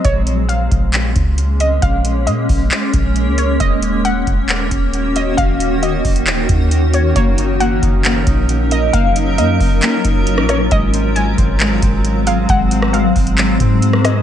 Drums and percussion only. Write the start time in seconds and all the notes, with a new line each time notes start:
0.05 kick, closed hi-hat
0.27 closed hi-hat
0.49 closed hi-hat
0.71 kick, closed hi-hat
0.93 clap, closed hi-hat
1.16 kick, closed hi-hat
1.38 closed hi-hat
1.60 closed hi-hat
1.82 kick, closed hi-hat
2.05 closed hi-hat
2.27 closed hi-hat
2.49 kick, open hi-hat
2.71 clap, closed hi-hat
2.93 kick, closed hi-hat
3.16 closed hi-hat
3.38 closed hi-hat
3.60 kick, closed hi-hat
3.82 closed hi-hat
4.05 closed hi-hat
4.27 kick, closed hi-hat
4.49 clap, closed hi-hat
4.71 kick, closed hi-hat
4.94 closed hi-hat
5.16 closed hi-hat
5.38 kick, closed hi-hat
5.60 closed hi-hat
5.83 closed hi-hat
6.05 kick, closed hi-hat, open hi-hat
6.16 closed hi-hat
6.27 clap, closed hi-hat
6.49 kick, closed hi-hat
6.71 closed hi-hat
6.94 closed hi-hat
7.16 kick, closed hi-hat
7.38 closed hi-hat
7.60 closed hi-hat
7.83 kick, closed hi-hat
8.05 clap, closed hi-hat
8.27 kick, closed hi-hat
8.49 closed hi-hat
8.71 closed hi-hat
8.94 kick, closed hi-hat
9.16 closed hi-hat
9.38 closed hi-hat
9.60 kick, open hi-hat
9.82 clap, closed hi-hat
10.05 kick, closed hi-hat
10.27 closed hi-hat
10.38 cross-stick
10.49 cross-stick, closed hi-hat
10.71 kick, closed hi-hat
10.94 closed hi-hat
11.16 closed hi-hat
11.38 kick, closed hi-hat
11.60 clap, closed hi-hat
11.82 kick, closed hi-hat
12.05 closed hi-hat
12.27 closed hi-hat
12.49 kick, closed hi-hat
12.71 closed hi-hat
12.82 cross-stick
12.94 closed hi-hat
13.16 kick, closed hi-hat, open hi-hat
13.27 closed hi-hat
13.38 clap, closed hi-hat
13.60 kick, closed hi-hat
13.82 closed hi-hat
13.93 cross-stick
14.05 cross-stick, closed hi-hat